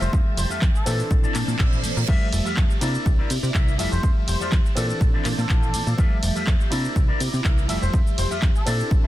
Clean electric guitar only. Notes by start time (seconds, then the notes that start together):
Already playing: F4 G4 A4 E5
0.50 F4 G4 A4 E5
0.74 muted clean electric guitar stroke
0.86 E4 A4 C5 D5
1.23 E4 A4 C5 D5
1.35 A5
1.47 muted clean electric guitar stroke
1.59 E4 A4 C5 D5 E5
1.96 muted clean electric guitar stroke
2.08 F4 G4 A4 E5
2.45 F4 G4 A4 E5
2.70 muted clean electric guitar stroke
2.81 E4 A#4 C5 D5
3.19 E4 A#4 C5 D5
3.43 muted clean electric guitar stroke
3.54 E4 A#4 C5 E5
3.79 F4 G4 A4 E5
4.41 F4 G4 A4 D5
4.65 muted clean electric guitar stroke
4.76 E4 A4 C5 D5
5.14 E4 A4 C5 D5
5.38 muted clean electric guitar stroke
5.49 E4 A4 C5 F5
5.87 muted clean electric guitar stroke
5.98 F4 G4 A4 E5
6.35 F4 G4 A4 E5
6.60 muted clean electric guitar stroke
6.71 E4 A#4 C5 D5
7.08 E4 A#4 C5 D5
7.33 muted clean electric guitar stroke
7.44 E4 A#4 C5 E5
7.69 F4 G4 A4 E5
8.30 F4 G4 A4 E5
8.55 muted clean electric guitar stroke
8.67 E4 A4 C5 D5
9.04 A4 C5 E5